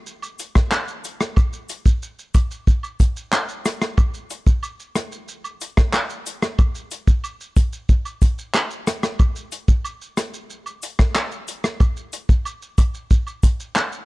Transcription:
0.06 shaker medium
0.22 high woodblock medium
0.22 shaker medium
0.39 closed hi-hat medium
0.39 cabasa medium
0.39 shaker soft
0.55 kick medium
0.55 cross-stick medium
0.55 shaker medium
0.72 cross-stick medium
0.72 clap loud
0.72 high woodblock medium
0.72 shaker medium
0.88 shaker medium
1.04 closed hi-hat medium
1.04 cabasa medium
1.04 shaker medium
1.21 cross-stick medium
1.21 shaker medium
1.36 kick loud
1.36 high woodblock medium
1.36 shaker medium
1.53 shaker medium
1.69 closed hi-hat medium
1.69 cabasa medium
1.69 shaker medium
1.86 kick loud
1.86 shaker medium
2.03 shaker medium
2.19 shaker soft
2.34 kick loud
2.34 closed hi-hat medium
2.34 cabasa medium
2.34 high woodblock medium
2.34 shaker medium
2.51 shaker medium
2.67 kick medium
2.67 shaker medium
2.83 high woodblock medium
2.83 shaker medium
3.00 kick loud
3.00 closed hi-hat medium
3.00 cabasa medium
3.00 shaker medium
3.17 shaker medium
3.32 cross-stick medium
3.32 clap medium
3.32 high woodblock medium
3.32 shaker medium
3.49 shaker medium
3.65 cross-stick loud
3.65 closed hi-hat medium
3.65 cabasa medium
3.65 shaker medium
3.81 cross-stick medium
3.81 shaker medium
3.97 kick loud
3.97 high woodblock medium
3.97 shaker medium
4.14 shaker medium
4.30 closed hi-hat medium
4.30 cabasa medium
4.30 shaker medium
4.47 kick loud
4.47 shaker medium
4.63 high woodblock medium
4.63 shaker medium
4.80 shaker medium
4.95 cross-stick medium
4.95 closed hi-hat medium
4.95 cabasa medium
4.95 shaker medium
5.12 shaker medium
5.28 shaker medium
5.44 high woodblock medium
5.44 shaker medium
5.61 closed hi-hat medium
5.61 cabasa medium
5.61 shaker medium
5.77 kick loud
5.77 cross-stick loud
5.77 shaker medium
5.93 cross-stick medium
5.93 clap medium
5.93 high woodblock medium
5.93 shaker medium
6.10 shaker medium
6.26 closed hi-hat medium
6.26 cabasa medium
6.26 shaker medium
6.42 cross-stick loud
6.42 shaker medium
6.59 kick loud
6.59 high woodblock medium
6.59 shaker medium
6.75 shaker medium
6.91 closed hi-hat medium
6.91 cabasa medium
6.91 shaker medium
7.08 kick loud
7.08 shaker medium
7.24 high woodblock medium
7.24 shaker medium
7.41 shaker soft
7.56 kick loud
7.56 closed hi-hat medium
7.56 cabasa medium
7.56 shaker medium
7.73 shaker medium
7.89 kick medium
7.89 shaker medium
8.05 high woodblock medium
8.05 shaker medium
8.22 kick loud
8.22 closed hi-hat medium
8.22 cabasa medium
8.22 shaker medium
8.38 shaker medium
8.54 cross-stick loud
8.54 clap medium
8.54 high woodblock medium
8.54 shaker medium
8.71 shaker medium
8.87 cross-stick loud
8.87 closed hi-hat medium
8.87 cabasa medium
8.87 shaker medium
9.03 cross-stick medium
9.03 shaker medium
9.19 kick loud
9.19 high woodblock medium
9.19 shaker medium
9.36 shaker medium
9.52 closed hi-hat medium
9.52 cabasa medium
9.52 shaker medium
9.68 kick loud
9.68 shaker medium
9.85 high woodblock medium
9.85 shaker medium
10.02 shaker medium
10.17 cross-stick medium
10.17 closed hi-hat medium
10.17 cabasa medium
10.17 shaker medium
10.34 shaker medium
10.50 shaker medium
10.66 high woodblock medium
10.66 shaker medium
10.82 closed hi-hat medium
10.82 cabasa medium
10.82 shaker medium
10.99 kick medium
10.99 cross-stick medium
10.99 shaker medium
11.15 cross-stick medium
11.15 clap medium
11.15 high woodblock medium
11.15 shaker medium
11.31 shaker medium
11.48 closed hi-hat medium
11.48 cabasa medium
11.48 shaker medium
11.64 cross-stick medium
11.64 shaker medium
11.80 kick loud
11.80 high woodblock medium
11.80 shaker medium
11.97 shaker medium
12.13 closed hi-hat medium
12.13 cabasa medium
12.13 shaker medium
12.29 kick loud
12.29 shaker medium
12.45 high woodblock medium
12.45 shaker medium
12.62 shaker medium
12.78 kick loud
12.78 closed hi-hat medium
12.78 cabasa medium
12.78 high woodblock medium
12.78 shaker medium
12.94 shaker medium
13.11 kick loud
13.11 shaker medium
13.27 high woodblock medium
13.27 shaker medium
13.43 kick loud
13.43 closed hi-hat medium
13.43 cabasa medium
13.43 shaker soft
13.60 shaker medium
13.76 cross-stick medium
13.76 clap medium
13.76 high woodblock medium
13.76 shaker medium
13.92 shaker medium

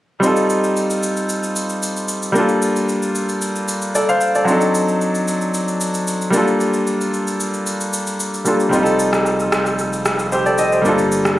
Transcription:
0.20 2.30 G3 medium
0.20 2.31 C4 medium
0.20 2.32 D#4 medium
0.20 shaker medium
0.25 2.33 F4 medium
0.25 2.33 A4 medium
0.36 shaker medium
0.50 shaker medium
0.64 shaker medium
0.76 shaker medium
0.90 shaker medium
1.03 shaker medium
1.17 shaker soft
1.29 shaker medium
1.43 shaker medium
1.56 shaker medium
1.69 shaker soft
1.83 shaker medium
1.97 shaker soft
2.08 shaker medium
2.23 shaker soft
2.32 4.42 G3 medium
2.32 4.43 A#3 medium
2.32 4.44 D4 medium
2.32 shaker medium
2.38 4.45 F4 medium
2.38 3.94 A4 medium
2.49 shaker medium
2.62 shaker medium
2.76 shaker medium
2.89 shaker medium
3.02 shaker medium
3.15 shaker medium
3.29 shaker soft
3.41 shaker medium
3.56 shaker medium
3.68 shaker medium
3.82 shaker soft
3.95 4.08 A4 medium
3.95 4.08 D5 medium
3.95 shaker medium
4.09 4.34 C5 medium
4.09 4.34 F5 medium
4.09 shaker soft
4.21 shaker medium
4.35 4.50 A4 medium
4.35 4.60 D5 medium
4.35 shaker soft
4.45 6.28 F#3 medium
4.45 6.29 C4 medium
4.45 6.30 D4 medium
4.45 shaker medium
4.50 6.31 D#4 medium
4.50 6.32 A4 medium
4.61 shaker medium
4.75 shaker medium
4.88 shaker medium
5.01 shaker medium
5.15 shaker medium
5.28 shaker medium
5.41 shaker soft
5.54 shaker medium
5.68 shaker medium
5.81 shaker medium
5.94 shaker medium
6.07 shaker medium
6.21 shaker soft
6.30 8.40 G3 medium
6.30 8.41 A#3 medium
6.30 8.42 D4 medium
6.30 shaker medium
6.36 8.43 F4 medium
6.36 8.44 A4 medium
6.47 shaker soft
6.60 shaker medium
6.74 shaker medium
6.87 shaker medium
7.01 shaker medium
7.14 shaker medium
7.27 shaker medium
7.40 shaker medium
7.54 shaker soft
7.66 shaker medium
7.81 shaker medium
7.93 shaker medium
8.07 shaker soft
8.20 shaker medium
8.34 shaker soft
8.45 8.68 G3 medium
8.45 8.72 A#3 soft
8.45 8.73 D4 soft
8.45 8.73 F4 soft
8.45 8.74 A4 medium
8.45 shaker medium
8.60 shaker soft
8.69 10.81 F1 medium
8.69 10.79 G3 medium
8.69 10.80 C4 medium
8.69 10.81 D#4 medium
8.69 shaker medium
8.75 10.82 F4 medium
8.75 8.81 G4 medium
8.83 10.34 A4 medium
8.83 shaker medium
8.99 shaker medium
9.13 cross-stick medium
9.13 shaker medium
9.26 shaker medium
9.40 shaker medium
9.52 cross-stick loud
9.52 shaker medium
9.66 shaker soft
9.79 shaker medium
9.93 shaker medium
10.05 cross-stick medium
10.05 shaker medium
10.19 shaker medium
10.32 10.46 G4 medium
10.32 10.45 C5 medium
10.32 shaker medium
10.46 10.58 A4 medium
10.46 10.58 D5 medium
10.46 shaker soft
10.58 10.72 A4 medium
10.58 10.72 D#5 medium
10.58 shaker medium
10.72 10.98 G4 medium
10.72 10.98 C5 medium
10.72 shaker soft
10.82 11.39 G1 medium
10.82 11.39 G3 medium
10.82 11.39 A#3 medium
10.82 11.39 D4 medium
10.82 shaker medium
10.87 11.39 F4 medium
10.87 11.39 A4 medium
10.98 shaker medium
11.12 shaker medium
11.25 cross-stick medium
11.25 shaker medium

